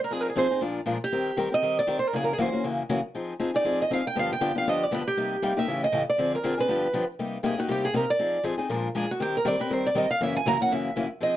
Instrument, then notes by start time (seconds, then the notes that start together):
steel-string acoustic guitar
0.04 A#4
0.10 F3 C4 D#4 G#4
0.21 A#4
0.29 G#4
0.36 F3 C4 D#4 G#4 C5
0.50 C4 D#4 G#4
0.61 A#2 F3 G#3 D4 F4 A#4
0.86 A#2 F3 G#3 D4 F4 A#4
1.04 G4
1.12 D#3 G3 C4 G4 A#4
1.37 D#3 G3 C4 G4 A#4
1.50 C4 G4 A#4 D#5
1.62 D#3 G3 C4 G4 A#4
1.79 D5
1.87 D#3 G3 C4 G4 A#4
1.99 C5
2.07 A#4
2.13 F#2 C#3 E3 A#3 C#4 F#4 G#4
2.24 A#4
2.33 G#4
2.38 F#2 C#3 E3 A#3 C#4 F#4 C5
2.52 E3 A#3 C#4 F#4
2.64 F#2 C#3 E3 A#3 C#4 F#4
2.89 F#2 C#3 E3 A#3 C#4 F#4
3.15 F3 C4 D#4 G#4
3.40 F3 C4 D#4 G#4
3.54 C4 D#4 G#4 D5
3.64 F3 C4 D#4 G#4
3.82 D#5
3.90 F3 C4 D#4 G#4 F5
4.07 G5
4.15 G2 D3 F3 B3 D4 G4 F5
4.33 G5
4.41 G2 D3 F3 B3 D4 G4
4.55 F3 B3 D4 G4 F5
4.67 G2 D3 F3 B3 D4 G4 D#5
4.83 D5
4.91 G2 D3 F3 B3 D4 G4 B4
5.08 G4
5.17 C3 G3 A#3 D#4 G4
5.42 C3 G3 A#3 D#4 G4
5.56 A#3 D#4 G4 E5
5.67 A2 C#3 E3 A3 C#4 G4
5.84 D#5
5.92 A2 C#3 E3 A3 C#4 G4
6.10 D5
6.18 D3 F3 C4 D4 G#4
6.35 A#4
6.43 D3 F3 C4 D4 G#4
6.58 C4 D4 G#4 B4
6.68 G2 D3 F3 B3 D4 G4
6.93 G2 D3 F3 B3 D4 G4
7.19 C3 G3 A#3 D#4 G4
7.43 C3 G3 A#3 D#4 G4 G#4
7.57 A#3 D#4 F#4 G4
7.68 C3 G3 A#3 D#4 G4
7.85 G#4
7.94 C3 G3 A#3 D#4 G4 A#4
8.10 D5
8.19 F3 C4 D#4 G#4
8.44 F3 C4 D#4 G#4
8.58 C4 D#4 G#4
8.69 A#2 F3 G#3 D4 F4 A#4
8.95 A#2 F3 G#3 D4 F4 G#4 A#4
9.11 F#4
9.20 D#3 G3 C4 G4 A#4
9.37 A#4
9.45 D#3 G3 C4 G4 A#4 D5
9.59 C4 G4 A#4 B4
9.70 D#3 G3 C4 G4 A#4 C5
9.87 D5
9.95 D#3 G3 C4 G4 A#4 D#5
10.11 F5
10.21 F#2 C#3 E3 A#3 C#4 F#4 E5
10.37 G#5
10.46 F#2 C#3 E3 A#3 C#4 F#4 A#5
10.60 E3 A#3 C#4 F#4 F#5
10.71 F#2 C#3 E3 A#3 C#4 F#4 E5
10.96 F#2 C#3 E3 A#3 C#4 F#4
11.20 F3 C4 D#4 G#4 D#5